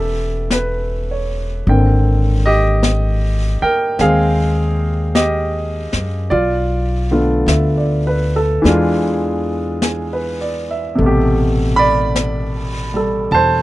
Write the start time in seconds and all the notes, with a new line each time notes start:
Already playing: E1 C#3 A3 B3 C#4 G4 A4 E5
0.51 B4, brush sweep, snare, hi-hat pedal
1.11 C#5
1.67 G#1 D3 A#3 C4 G5, brush sweep
2.46 G4 D#5
2.83 brush sweep, snare, hi-hat pedal
3.62 A#4 G5, muted upright bass stroke
3.99 D#2 C4 G#4 F5, brush sweep, snare
4.03 G#3
5.15 G4 D#5, brush sweep, snare, hi-hat pedal
5.93 F#2, snare
6.30 B1 F4 D5, brush sweep
7.11 D3 A3 B3 F4
7.46 D2 E5, brush sweep, snare, hi-hat pedal
7.77 D5
8.07 B4
8.36 A4
8.62 E2 E3 G#3 D4, brush sweep, snare
8.68 F4
9.82 G#4, brush sweep, snare, hi-hat pedal
10.13 B4
10.41 D5
10.71 E5
10.95 A1 C3 A3, brush sweep
11.02 B2
11.06 G4
11.76 D5 B5
12.16 brush sweep, snare, hi-hat pedal
12.94 G3 A4
13.31 E1 C5 A5, brush sweep